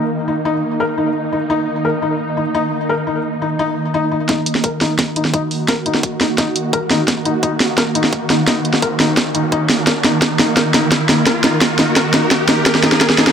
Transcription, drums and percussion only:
4.29 kick, snare, closed hi-hat
4.46 closed hi-hat
4.55 snare
4.64 kick, closed hi-hat
4.81 snare, open hi-hat
4.99 kick, snare, closed hi-hat
5.16 closed hi-hat
5.25 snare
5.34 kick, closed hi-hat
5.51 open hi-hat
5.68 kick, snare, closed hi-hat
5.86 closed hi-hat
5.95 snare
6.03 kick, closed hi-hat
6.21 snare, open hi-hat
6.38 kick, snare, closed hi-hat
6.56 closed hi-hat
6.73 kick, closed hi-hat
6.91 snare, open hi-hat
7.08 kick, snare, closed hi-hat
7.25 closed hi-hat
7.43 kick, closed hi-hat
7.60 snare, open hi-hat
7.78 kick, snare, closed hi-hat
7.95 closed hi-hat
8.04 snare
8.13 kick, closed hi-hat
8.30 snare, open hi-hat
8.47 kick, snare, closed hi-hat
8.65 closed hi-hat
8.74 snare
8.82 kick, closed hi-hat
9.00 snare, open hi-hat
9.17 kick, snare, closed hi-hat
9.35 closed hi-hat
9.52 kick, closed hi-hat
9.70 snare, open hi-hat
9.87 kick, snare, closed hi-hat
10.04 snare, closed hi-hat
10.22 kick, snare, closed hi-hat
10.39 snare, open hi-hat
10.57 kick, snare, closed hi-hat
10.74 snare, closed hi-hat
10.92 kick, snare, closed hi-hat
11.09 snare, open hi-hat
11.27 kick, snare, closed hi-hat
11.44 snare, closed hi-hat
11.61 kick, snare, closed hi-hat
11.79 snare, open hi-hat
11.96 kick, snare, closed hi-hat
12.14 snare, closed hi-hat
12.31 kick, snare, closed hi-hat
12.49 snare, open hi-hat
12.66 kick, snare, closed hi-hat
12.75 snare
12.84 snare, closed hi-hat
12.92 snare
13.01 kick, snare, closed hi-hat
13.10 snare
13.18 snare, open hi-hat
13.27 snare

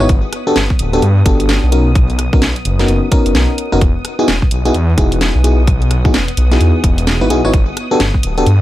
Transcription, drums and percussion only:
0.00 cross-stick
0.09 kick, closed hi-hat
0.33 cross-stick, closed hi-hat
0.56 snare, closed hi-hat
0.70 kick
0.79 closed hi-hat
0.93 closed hi-hat
1.02 closed hi-hat
1.26 kick, closed hi-hat
1.40 closed hi-hat
1.49 snare, closed hi-hat
1.72 closed hi-hat
1.95 kick, closed hi-hat
2.10 closed hi-hat
2.19 cross-stick, closed hi-hat
2.33 kick
2.42 snare, closed hi-hat
2.56 closed hi-hat
2.65 closed hi-hat
2.79 snare, closed hi-hat
2.88 closed hi-hat
3.12 kick, closed hi-hat
3.26 closed hi-hat
3.35 snare, closed hi-hat
3.58 closed hi-hat
3.72 cross-stick
3.81 kick, closed hi-hat
4.05 cross-stick, closed hi-hat
4.28 snare, closed hi-hat
4.42 kick
4.51 closed hi-hat
4.65 closed hi-hat
4.74 closed hi-hat
4.98 kick, closed hi-hat
5.12 closed hi-hat
5.21 snare, closed hi-hat
5.44 closed hi-hat
5.67 kick, closed hi-hat
5.82 closed hi-hat
5.91 cross-stick, closed hi-hat
6.05 kick
6.14 snare, closed hi-hat
6.28 closed hi-hat
6.37 closed hi-hat
6.52 snare, closed hi-hat
6.61 closed hi-hat
6.84 kick, closed hi-hat
6.98 closed hi-hat
7.07 snare, closed hi-hat
7.30 closed hi-hat
7.45 cross-stick
7.54 kick, closed hi-hat
7.77 cross-stick, closed hi-hat
8.00 snare, closed hi-hat
8.14 kick
8.23 closed hi-hat
8.38 closed hi-hat
8.46 closed hi-hat

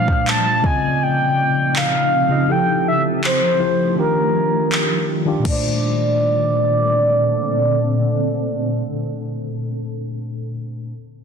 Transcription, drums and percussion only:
0.08 kick
0.28 clap
0.64 kick
1.76 clap
3.24 clap
4.72 clap
5.45 kick, crash

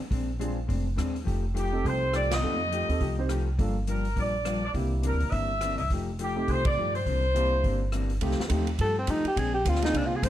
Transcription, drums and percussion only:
0.11 kick, open hi-hat
0.41 closed hi-hat
0.69 kick, open hi-hat
0.98 cross-stick, closed hi-hat
1.16 open hi-hat
1.27 kick, open hi-hat
1.57 closed hi-hat
1.85 kick, open hi-hat
2.13 cross-stick, closed hi-hat
2.31 snare, ride
2.72 closed hi-hat
2.89 open hi-hat
3.01 kick, open hi-hat
3.29 cross-stick, closed hi-hat
3.59 kick, open hi-hat
3.87 closed hi-hat
4.05 open hi-hat
4.16 kick, open hi-hat
4.45 cross-stick, closed hi-hat
4.74 kick, open hi-hat
5.03 closed hi-hat
5.20 open hi-hat
5.32 kick, open hi-hat
5.61 cross-stick, closed hi-hat
5.78 open hi-hat
5.90 kick, open hi-hat
6.19 closed hi-hat
6.48 kick, open hi-hat
6.65 kick, ride
6.95 open hi-hat
7.06 kick, open hi-hat
7.36 closed hi-hat
7.64 kick, open hi-hat
7.92 cross-stick, closed hi-hat
8.10 open hi-hat
8.21 kick, ride
8.31 snare
8.40 snare
8.50 kick, hi-hat pedal, ride
8.67 ride
8.79 kick, ride
9.07 kick, hi-hat pedal, ride
9.25 ride
9.36 kick, ride
9.65 kick, hi-hat pedal, ride
9.75 snare
9.82 snare, ride
9.94 kick, ride
10.23 kick, hi-hat pedal, ride

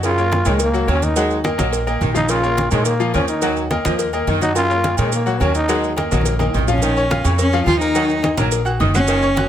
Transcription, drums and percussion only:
0.03 cowbell, low agogo, maracas
0.18 high conga, maracas
0.31 cowbell, high conga, low agogo, maracas
0.45 cowbell, low conga, low agogo, maracas
0.59 cowbell, high conga, maracas
0.74 high conga, low agogo, maracas
0.88 cowbell, high conga, low timbale, low agogo, maracas
1.02 cowbell, high conga, maracas
1.16 cowbell, low agogo, maracas
1.30 high conga, maracas
1.44 cowbell, high conga, low agogo, maracas
1.59 high conga, low agogo, maracas
1.73 cowbell, high conga, low agogo, maracas
1.87 high conga, low agogo, maracas
2.01 cowbell, high conga, low timbale, maracas
2.15 high conga, maracas
2.29 cowbell, low agogo, maracas
2.43 high conga, maracas
2.57 cowbell, high conga, low agogo, maracas
2.71 cowbell, low conga, low agogo, maracas
2.85 cowbell, high conga, maracas
3.00 high conga, low agogo, maracas
3.14 cowbell, high conga, low agogo, maracas
3.28 cowbell, maracas
3.42 cowbell, high conga, low agogo, maracas
3.56 high conga, maracas
3.70 cowbell, high conga, low agogo, maracas
3.85 high conga, low agogo, maracas
3.99 cowbell, low agogo, maracas
4.13 high conga, low agogo, maracas
4.27 cowbell, high conga, low timbale, maracas
4.41 high conga, maracas
4.55 cowbell, high conga, low agogo, maracas
4.70 high conga, maracas
4.84 cowbell, high conga, low agogo, maracas
4.97 cowbell, low conga, low agogo, maracas
5.12 cowbell, high conga, maracas
5.26 high conga, low agogo, maracas
5.40 cowbell, high conga, low timbale, low agogo, maracas
5.55 cowbell, maracas
5.68 cowbell, high conga, low agogo, maracas
5.84 high conga, maracas
5.97 cowbell, high conga, low agogo, maracas
6.11 high conga, high timbale, low agogo, maracas
6.21 high conga
6.25 cowbell, high timbale, low agogo, maracas
6.39 high conga, high timbale, low agogo, maracas
6.54 cowbell, low timbale, maracas
6.59 low conga
6.68 low conga, low timbale, maracas
6.78 low conga
6.82 cowbell, low agogo, maracas
6.97 high conga, maracas
7.10 cowbell, high conga, low agogo, maracas
7.24 cowbell, low conga, low agogo, maracas
7.39 cowbell, high conga, maracas
7.52 high conga, low agogo, maracas
7.66 cowbell, high conga, low timbale, low agogo, maracas
7.81 cowbell, maracas
7.94 cowbell, high conga, low agogo, maracas
8.09 high conga, maracas
8.22 cowbell, high conga, low agogo, maracas
8.37 high conga, low agogo, maracas
8.51 cowbell, low agogo, maracas
8.65 high conga, low agogo, maracas
8.80 cowbell, high conga, low timbale, maracas
8.94 high conga, maracas
9.07 cowbell, high conga, low agogo, maracas
9.22 high conga, maracas
9.36 cowbell, high conga, low agogo, maracas

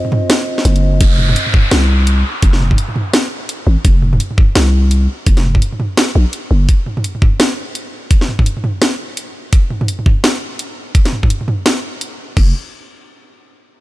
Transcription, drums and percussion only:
0.05 mid tom
0.12 mid tom
0.30 snare, closed hi-hat
0.58 snare
0.65 closed hi-hat
0.76 closed hi-hat
1.01 kick, closed hi-hat
1.18 mid tom
1.29 mid tom
1.36 closed hi-hat
1.47 mid tom
1.54 kick, mid tom
1.71 snare, closed hi-hat
2.07 closed hi-hat
2.42 kick, closed hi-hat
2.53 snare
2.60 mid tom
2.71 kick, mid tom
2.78 closed hi-hat
2.89 mid tom
2.96 mid tom
3.14 snare, closed hi-hat
3.49 closed hi-hat
3.85 kick, closed hi-hat
4.02 mid tom
4.13 mid tom
4.20 closed hi-hat
4.31 mid tom
4.38 kick, mid tom
4.55 snare, closed hi-hat
4.91 closed hi-hat
5.26 kick, closed hi-hat
5.37 snare, closed hi-hat
5.44 mid tom
5.55 kick, mid tom
5.62 closed hi-hat
5.73 mid tom
5.80 mid tom
5.97 snare, closed hi-hat
6.33 closed hi-hat
6.69 kick, closed hi-hat
6.86 mid tom
6.97 mid tom
7.04 closed hi-hat
7.15 mid tom
7.22 kick, mid tom
7.40 snare, closed hi-hat
7.75 closed hi-hat
8.11 kick, closed hi-hat
8.21 snare
8.28 mid tom
8.39 kick, mid tom
8.46 closed hi-hat
8.57 mid tom
8.64 mid tom
8.82 snare, closed hi-hat
9.17 closed hi-hat
9.53 kick, closed hi-hat
9.70 mid tom
9.81 mid tom
9.88 closed hi-hat
9.99 mid tom
10.06 kick, mid tom
10.24 snare, closed hi-hat
10.59 closed hi-hat
10.95 kick, closed hi-hat
11.05 snare, closed hi-hat
11.13 mid tom
11.23 kick, mid tom
11.30 closed hi-hat
11.41 mid tom
11.48 mid tom
11.66 snare, closed hi-hat
12.01 closed hi-hat
12.37 kick, crash

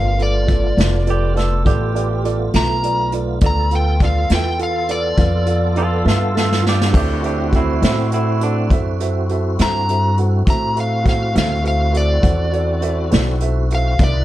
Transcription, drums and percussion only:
0.19 closed hi-hat
0.48 kick, closed hi-hat
0.78 snare, closed hi-hat
1.07 closed hi-hat
1.37 snare, closed hi-hat
1.66 kick, closed hi-hat
1.96 closed hi-hat
2.25 closed hi-hat
2.53 snare, closed hi-hat
2.83 closed hi-hat
3.12 closed hi-hat
3.41 kick, closed hi-hat
3.71 closed hi-hat
4.00 kick, snare, closed hi-hat
4.29 snare, closed hi-hat
4.59 closed hi-hat
4.89 closed hi-hat
5.18 kick, closed hi-hat
5.46 closed hi-hat
5.76 closed hi-hat
6.08 snare
6.37 snare
6.52 snare
6.67 snare
6.81 snare
6.94 kick, closed hi-hat, crash
7.24 closed hi-hat
7.53 kick, closed hi-hat
7.82 snare, closed hi-hat
8.12 closed hi-hat
8.41 closed hi-hat
8.70 kick, closed hi-hat
9.00 closed hi-hat
9.29 closed hi-hat
9.59 snare, closed hi-hat
9.89 closed hi-hat
10.18 closed hi-hat
10.47 kick, closed hi-hat
10.77 closed hi-hat
11.05 kick, snare, closed hi-hat
11.35 snare, closed hi-hat
11.65 closed hi-hat
11.94 closed hi-hat
12.23 kick, closed hi-hat
12.53 closed hi-hat
12.82 closed hi-hat
13.11 snare, closed hi-hat
13.40 closed hi-hat
13.70 closed hi-hat
13.99 kick, closed hi-hat

